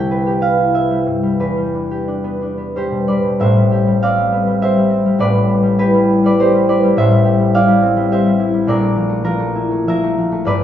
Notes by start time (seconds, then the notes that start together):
Already playing: C2 G3 C4 E4 G4 C5 G5 A5 C6
0.11 B4
0.26 G4
0.41 B4 F5
0.57 E4
0.74 B3 E5
0.91 G3
1.06 G2
1.23 G3
1.40 E2 B4
1.56 G3
1.74 D4
1.91 G4
2.08 D4
2.24 B3
2.42 D4
2.58 B3
2.75 G3 G4 C5
2.91 B2
3.08 G3 B4 D5
3.23 B2
3.40 A1 A2 C5 E5
3.57 G3
3.72 G4
3.87 G3
4.02 C4 D5 F5
4.18 G3
4.32 B3
4.47 G3
4.62 G4 C5 E5
4.77 G3
4.90 C4
5.06 G3
5.19 A1 A2 B4 D5
5.34 G3
5.48 B3
5.63 G3
5.79 E4 G4 B4
5.94 G3
6.09 B3
6.24 G3 B4 D5
6.40 B3 G4 C5
6.54 G3
6.69 E4 B4 D5
6.84 G3
6.96 A1 A2 C5 E5
7.11 G3
7.25 G4
7.40 G3
7.54 E4 D5 F5
7.68 G3
7.82 C4
7.97 G3
8.12 G4 C5 E5
8.26 G3
8.40 E4
8.53 G3
8.67 A#1 A#2 A#4 D5
8.81 A3
8.96 F3
9.09 A3
9.24 F3 F4 A#4
9.39 A3
9.55 E4
9.71 A3
9.87 F3 A#4 E5
10.03 A3
10.18 F3
10.32 A3
10.45 G1 G2 B4 D5